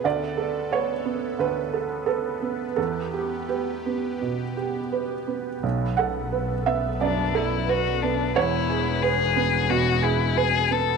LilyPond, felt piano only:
\new Staff \with { instrumentName = "Felt piano" } { \time 4/4 \key b \minor \tempo 4 = 88 << { d''4 cis''4 b'4 a'4 | a'4 g'2~ g'8 r8 | r8 fis''4 e''8 d''2 | cis''4 r2. | } \\ { d,8 a'8 b'8 b8 d,8 a'8 b'8 b8 | e,8 g'8 b'8 b8 b,8 g'8 b'8 b8 | b,,8 a'8 b'8 b8 fis,8 a'8 b'8 b8 | e,8 gis'8 b'8 b8 b,8 gis'8 b'8 b8 | } >> }